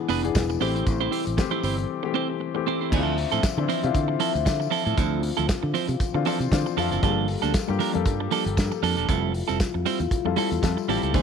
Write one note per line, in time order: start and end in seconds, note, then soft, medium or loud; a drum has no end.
0.00 0.59 D3 medium
0.00 0.23 E3 loud
0.00 0.59 G#3 medium
0.00 0.24 B3 loud
0.00 0.59 B3 medium
0.00 0.24 D4 medium
0.00 2.75 E4 medium
0.00 0.25 G#4 loud
0.09 0.30 F1 medium
0.09 0.25 B3 medium
0.09 0.23 D4 medium
0.09 0.22 G#4 loud
0.09 0.22 B4 loud
0.09 open hi-hat medium
0.09 tambourine medium
0.23 0.58 E3 medium
0.23 0.61 B3 medium
0.23 0.61 D4 medium
0.23 0.61 G#4 loud
0.23 muted clean electric guitar stroke soft
0.23 closed hi-hat medium
0.35 0.56 E1 loud
0.35 muted clean electric guitar stroke soft
0.35 kick loud
0.35 snare loud
0.35 closed hi-hat medium
0.35 tambourine loud
0.49 muted clean electric guitar stroke soft
0.49 tambourine medium
0.60 0.82 A1 medium
0.60 2.75 C3 medium
0.60 1.23 E3 medium
0.60 2.75 G3 medium
0.60 1.23 A3 medium
0.60 2.75 A3 medium
0.60 1.23 C4 medium
0.60 0.75 C4 medium
0.60 0.74 E4 medium
0.60 1.24 G4 medium
0.60 0.74 G4 loud
0.60 0.74 C5 loud
0.60 open hi-hat medium
0.60 tambourine medium
0.75 0.85 C4 soft
0.75 0.85 E4 medium
0.75 0.85 G4 medium
0.75 0.85 C5 medium
0.75 closed hi-hat soft
0.86 1.07 A1 loud
0.86 muted clean electric guitar stroke soft
0.86 kick loud
0.86 closed hi-hat medium
0.86 tambourine medium
1.00 1.10 C4 medium
1.00 1.10 E4 medium
1.00 1.11 G4 medium
1.00 1.11 C5 medium
1.11 1.24 C4 medium
1.11 1.25 E4 medium
1.11 1.25 G4 medium
1.11 1.25 C5 medium
1.11 open hi-hat medium
1.26 1.36 A1 medium
1.26 muted clean electric guitar stroke soft
1.26 closed hi-hat soft
1.26 tambourine soft
1.37 1.79 E3 loud
1.37 1.80 A3 medium
1.37 1.80 C4 medium
1.37 1.80 G4 loud
1.37 muted clean electric guitar stroke soft
1.37 kick loud
1.37 snare loud
1.37 closed hi-hat medium
1.37 tambourine medium
1.51 1.62 C4 medium
1.51 1.62 E4 medium
1.51 1.63 G4 medium
1.51 1.63 C5 medium
1.63 1.84 G1 medium
1.63 1.76 C4 medium
1.63 1.76 E4 medium
1.63 1.77 G4 medium
1.63 1.77 C5 medium
1.63 open hi-hat medium
1.63 tambourine medium
1.78 closed hi-hat soft
2.03 2.35 E3 medium
2.03 2.35 A3 medium
2.03 2.35 C4 medium
2.03 2.36 G4 loud
2.03 muted clean electric guitar stroke soft
2.14 2.30 C4 medium
2.14 2.29 E4 medium
2.14 2.28 G4 medium
2.14 2.28 C5 medium
2.29 muted clean electric guitar stroke soft
2.40 muted clean electric guitar stroke soft
2.54 2.92 E3 loud
2.54 2.92 A3 medium
2.54 2.90 C4 medium
2.54 2.92 G4 medium
2.54 muted clean electric guitar stroke soft
2.67 2.81 C4 medium
2.67 2.80 E4 medium
2.67 2.80 G4 loud
2.67 2.80 C5 medium
2.81 2.91 C4 medium
2.81 2.91 E4 medium
2.81 2.91 G4 medium
2.81 2.91 C5 medium
2.91 3.24 D2 loud
2.91 6.99 D3 medium
2.91 6.99 F3 medium
2.91 3.16 F3 medium
2.91 3.34 C4 medium
2.91 6.99 C4 medium
2.91 3.16 C4 loud
2.91 3.34 D4 medium
2.91 2.99 E4 medium
2.91 3.17 E4 medium
2.91 3.17 A4 loud
2.91 4.95 E5 medium
2.91 kick loud
2.91 crash medium
2.91 tambourine medium
2.99 3.37 F4 medium
3.18 muted clean electric guitar stroke soft
3.18 open hi-hat medium
3.32 3.41 A2 medium
3.32 3.43 F3 medium
3.32 3.42 C4 medium
3.32 3.42 E4 medium
3.32 3.42 A4 medium
3.32 closed hi-hat soft
3.32 tambourine soft
3.43 kick loud
3.43 snare loud
3.43 closed hi-hat medium
3.43 tambourine loud
3.57 3.66 D3 medium
3.57 3.72 E3 loud
3.57 3.73 C4 medium
3.57 3.73 D4 medium
3.57 3.73 E4 loud
3.57 muted clean electric guitar stroke medium
3.69 3.85 F3 medium
3.69 3.83 C4 medium
3.69 3.82 E4 medium
3.69 3.83 C5 medium
3.69 open hi-hat medium
3.69 tambourine medium
3.83 3.93 C3 loud
3.83 4.47 C4 medium
3.83 4.47 D4 medium
3.83 4.47 E4 loud
3.83 4.47 F4 loud
3.83 muted clean electric guitar stroke soft
3.83 closed hi-hat medium
3.94 4.15 D3 medium
3.94 kick loud
3.94 closed hi-hat medium
3.94 tambourine medium
4.08 muted clean electric guitar stroke soft
4.20 4.36 F3 medium
4.20 4.34 C4 medium
4.20 4.33 E4 medium
4.20 4.33 A4 medium
4.20 open hi-hat medium
4.20 tambourine medium
4.34 4.44 D2 loud
4.34 muted clean electric guitar stroke soft
4.34 closed hi-hat medium
4.34 tambourine soft
4.45 4.67 D3 loud
4.45 muted clean electric guitar stroke soft
4.45 kick loud
4.45 snare loud
4.45 closed hi-hat medium
4.45 tambourine loud
4.60 muted clean electric guitar stroke soft
4.60 tambourine medium
4.71 4.85 F3 medium
4.71 4.85 C4 medium
4.71 4.84 E4 medium
4.71 4.84 A4 medium
4.71 open hi-hat medium
4.71 tambourine medium
4.85 4.95 A2 loud
4.85 4.96 F3 medium
4.85 4.96 C4 medium
4.85 4.96 E4 medium
4.85 4.96 A4 medium
4.85 closed hi-hat soft
4.85 tambourine soft
4.97 5.30 D2 loud
4.97 5.21 F3 medium
4.97 5.21 C4 medium
4.97 5.21 E4 loud
4.97 7.01 F4 medium
4.97 5.22 A4 medium
4.97 kick loud
4.97 closed hi-hat medium
4.97 tambourine medium
5.23 muted clean electric guitar stroke medium
5.23 open hi-hat medium
5.37 5.47 D2 medium
5.37 5.46 F3 medium
5.37 5.46 C4 medium
5.37 5.47 E4 medium
5.37 5.47 A4 medium
5.37 closed hi-hat soft
5.37 tambourine soft
5.49 muted fingered electric bass stroke soft
5.49 kick loud
5.49 snare loud
5.49 closed hi-hat medium
5.49 tambourine loud
5.63 5.72 D3 medium
5.63 muted clean electric guitar stroke soft
5.74 5.90 F3 medium
5.74 5.88 C4 medium
5.74 5.88 E4 medium
5.74 5.88 C5 loud
5.74 open hi-hat medium
5.74 tambourine medium
5.88 5.98 C3 medium
5.88 muted clean electric guitar stroke medium
5.88 closed hi-hat medium
5.88 tambourine soft
6.00 kick medium
6.00 closed hi-hat medium
6.00 tambourine medium
6.14 6.23 D3 medium
6.14 6.21 E3 medium
6.14 6.22 C4 medium
6.14 6.22 D4 medium
6.14 6.22 F4 medium
6.14 muted clean electric guitar stroke medium
6.25 6.43 E3 medium
6.25 6.42 F3 medium
6.25 6.43 C4 medium
6.25 6.40 C4 medium
6.25 6.43 D4 medium
6.25 6.39 E4 medium
6.25 6.44 F4 loud
6.25 6.39 A4 loud
6.25 open hi-hat medium
6.25 tambourine medium
6.40 6.49 C3 medium
6.40 muted clean electric guitar stroke soft
6.40 closed hi-hat soft
6.40 tambourine soft
6.51 6.63 D3 loud
6.51 6.69 E3 medium
6.51 6.69 C4 medium
6.51 6.69 D4 medium
6.51 6.69 F4 loud
6.51 muted clean electric guitar stroke soft
6.51 kick loud
6.51 snare loud
6.51 closed hi-hat medium
6.51 tambourine loud
6.66 muted clean electric guitar stroke soft
6.66 tambourine medium
6.77 6.89 F2 medium
6.77 6.94 E3 medium
6.77 6.91 F3 medium
6.77 6.95 C4 medium
6.77 6.91 C4 medium
6.77 6.95 D4 medium
6.77 6.91 E4 medium
6.77 6.95 F4 loud
6.77 6.90 A4 medium
6.77 open hi-hat medium
6.77 tambourine medium
6.91 7.01 F#1 medium
6.91 7.01 F3 medium
6.91 7.02 C4 medium
6.91 7.02 E4 medium
6.91 7.02 A4 medium
6.91 closed hi-hat soft
6.91 tambourine soft
7.02 7.35 G1 loud
7.02 9.06 F3 medium
7.02 7.27 F3 medium
7.02 7.44 G3 medium
7.02 9.06 A#3 medium
7.02 7.45 A#3 medium
7.02 7.27 A#3 medium
7.02 7.27 D4 loud
7.02 7.45 F4 medium
7.02 9.06 G4 medium
7.02 7.10 G#4 medium
7.02 9.06 A4 medium
7.02 7.27 A4 loud
7.02 kick loud
7.02 closed hi-hat medium
7.02 tambourine soft
7.10 7.48 A4 medium
7.28 muted clean electric guitar stroke soft
7.28 open hi-hat medium
7.42 7.52 D2 medium
7.42 7.53 F3 medium
7.42 7.53 A#3 medium
7.42 7.53 D4 medium
7.42 7.53 A4 medium
7.42 closed hi-hat soft
7.42 tambourine soft
7.54 kick loud
7.54 snare medium
7.54 closed hi-hat medium
7.54 tambourine medium
7.68 7.78 G2 medium
7.68 7.83 G3 medium
7.68 7.84 A#3 medium
7.68 7.84 F4 medium
7.68 7.84 G4 loud
7.68 muted clean electric guitar stroke soft
7.79 7.96 F3 medium
7.79 7.93 A#3 medium
7.79 7.93 D4 medium
7.79 7.94 A#4 loud
7.79 open hi-hat medium
7.79 tambourine medium
7.93 8.04 F2 medium
7.93 8.58 G3 loud
7.93 8.58 A#3 medium
7.93 8.58 F4 medium
7.93 8.58 A4 loud
7.93 muted clean electric guitar stroke soft
7.93 closed hi-hat medium
8.05 8.26 G2 loud
8.05 kick loud
8.05 closed hi-hat medium
8.05 tambourine medium
8.20 muted clean electric guitar stroke medium
8.31 8.47 F3 medium
8.31 8.45 A#3 medium
8.31 8.45 D4 loud
8.31 8.44 A4 loud
8.31 open hi-hat medium
8.31 tambourine medium
8.45 8.55 G1 loud
8.45 muted clean electric guitar stroke soft
8.45 closed hi-hat soft
8.57 8.69 G2 loud
8.57 muted clean electric guitar stroke soft
8.57 kick loud
8.57 snare loud
8.57 closed hi-hat medium
8.57 tambourine loud
8.72 muted clean electric guitar stroke medium
8.72 tambourine medium
8.83 8.94 F2 medium
8.83 8.97 F3 medium
8.83 8.96 A#3 medium
8.83 8.96 D4 medium
8.83 8.96 A4 medium
8.83 open hi-hat medium
8.83 tambourine medium
8.97 9.06 E1 medium
8.97 9.08 F3 medium
8.97 9.08 A#3 medium
8.97 9.08 D4 medium
8.97 9.07 A4 medium
8.97 closed hi-hat soft
8.97 tambourine soft
9.09 9.41 F1 loud
9.09 9.32 G3 medium
9.09 11.13 G3 medium
9.09 11.13 A3 medium
9.09 9.33 C4 medium
9.09 11.13 E4 medium
9.09 9.33 E4 medium
9.09 11.13 F4 medium
9.09 9.33 A4 loud
9.09 kick loud
9.09 closed hi-hat medium
9.09 tambourine medium
9.34 open hi-hat medium
9.48 9.58 F1 medium
9.48 9.58 G3 medium
9.48 9.58 C4 medium
9.48 9.58 E4 medium
9.48 9.58 A4 medium
9.48 closed hi-hat soft
9.48 tambourine soft
9.60 kick loud
9.60 snare loud
9.60 closed hi-hat medium
9.60 tambourine loud
9.74 9.84 F2 medium
9.74 muted clean electric guitar stroke soft
9.86 10.02 G3 medium
9.86 10.00 C4 medium
9.86 10.00 E4 medium
9.86 10.00 C5 medium
9.86 open hi-hat medium
9.86 tambourine medium
10.00 10.09 E2 medium
10.00 muted clean electric guitar stroke soft
10.00 closed hi-hat medium
10.00 tambourine soft
10.11 kick loud
10.11 closed hi-hat medium
10.11 tambourine medium
10.25 10.35 F2 medium
10.25 10.33 G3 medium
10.25 10.33 E4 medium
10.25 10.33 F4 medium
10.25 10.33 A4 loud
10.25 muted clean electric guitar stroke soft
10.36 10.53 G3 medium
10.36 10.54 G3 medium
10.36 10.51 C4 medium
10.36 10.51 E4 medium
10.36 10.55 E4 medium
10.36 10.55 F4 medium
10.36 10.50 A4 loud
10.36 10.55 A4 loud
10.36 open hi-hat medium
10.36 tambourine medium
10.51 10.61 E2 medium
10.51 muted clean electric guitar stroke soft
10.51 closed hi-hat soft
10.51 tambourine soft
10.62 10.75 F2 loud
10.62 10.80 G3 loud
10.62 10.80 E4 medium
10.62 10.80 F4 medium
10.62 10.81 A4 loud
10.62 muted clean electric guitar stroke soft
10.62 kick loud
10.62 snare loud
10.62 closed hi-hat medium
10.62 tambourine medium
10.77 muted clean electric guitar stroke soft
10.77 tambourine medium
10.88 11.00 A1 medium
10.88 11.06 G3 medium
10.88 11.03 G3 medium
10.88 11.03 C4 medium
10.88 11.06 E4 medium
10.88 11.02 E4 medium
10.88 11.06 F4 medium
10.88 11.06 G4 loud
10.88 11.02 A4 medium
10.88 open hi-hat medium
10.88 tambourine soft
11.03 11.12 C#2 medium
11.03 11.14 G3 soft
11.03 11.13 C4 medium
11.03 11.14 E4 medium
11.03 11.13 A4 medium
11.03 closed hi-hat soft
11.03 tambourine soft
11.13 11.22 D2 loud
11.13 11.22 D3 medium
11.13 11.22 F3 medium
11.13 11.22 C4 medium
11.13 11.22 D4 medium
11.13 11.22 E4 medium
11.13 11.22 A4 loud
11.13 11.22 C5 medium
11.13 kick loud
11.13 closed hi-hat medium
11.13 tambourine medium